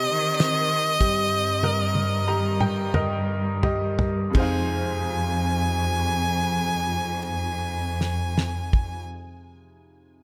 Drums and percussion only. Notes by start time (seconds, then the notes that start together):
0.40 snare, closed hi-hat
1.00 kick, closed hi-hat
1.63 high tom
1.95 high tom
2.60 mid tom
2.94 mid tom
3.63 floor tom
3.99 floor tom
4.35 kick, crash
8.01 snare
8.38 snare
8.73 kick